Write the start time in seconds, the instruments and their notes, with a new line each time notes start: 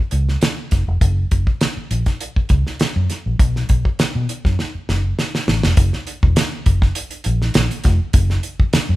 0.11 fingered electric bass C#2, closed hi-hat
0.29 snare
0.41 snare, closed hi-hat
0.71 fingered electric bass F#1, kick, snare, closed hi-hat
0.88 fingered electric bass F1
1.01 fingered electric bass F#1, kick, closed hi-hat
1.31 fingered electric bass F#1, kick, closed hi-hat
1.47 kick
1.61 snare, closed hi-hat
1.77 muted fingered electric bass stroke
1.91 fingered electric bass A#1, closed hi-hat
2.06 kick, snare, closed hi-hat
2.21 closed hi-hat
2.36 muted fingered electric bass stroke, kick
2.49 fingered electric bass C#2, kick, closed hi-hat
2.67 snare
2.80 snare, closed hi-hat
2.96 fingered electric bass F#2
3.10 snare, closed hi-hat
3.26 fingered electric bass A#1
3.39 fingered electric bass B1, kick, closed hi-hat
3.56 snare
3.69 fingered electric bass B1, kick, closed hi-hat
3.85 kick
3.99 muted fingered electric bass stroke, snare, closed hi-hat
4.15 fingered electric bass B2
4.29 closed hi-hat
4.45 fingered electric bass F#2, kick, snare
4.59 snare
4.75 muted fingered electric bass stroke
4.89 fingered electric bass F#1, snare
5.19 snare
5.35 snare
5.48 fingered electric bass A1, snare
5.63 fingered electric bass F1, snare
5.77 fingered electric bass F#1, kick, closed hi-hat
5.93 snare
6.07 closed hi-hat
6.23 fingered electric bass E1, kick
6.36 snare, closed hi-hat
6.66 fingered electric bass F#1, kick, closed hi-hat
6.82 kick, snare
6.95 closed hi-hat
7.11 closed hi-hat
7.24 fingered electric bass A#1, closed hi-hat
7.42 snare
7.54 fingered electric bass A#1, snare, closed hi-hat
7.71 closed hi-hat
7.84 fingered electric bass F1, kick, snare, closed hi-hat
8.13 fingered electric bass F#1, kick, closed hi-hat
8.30 snare
8.43 closed hi-hat
8.60 muted fingered electric bass stroke, kick
8.73 muted fingered electric bass stroke, snare, closed hi-hat
8.89 fingered electric bass F#2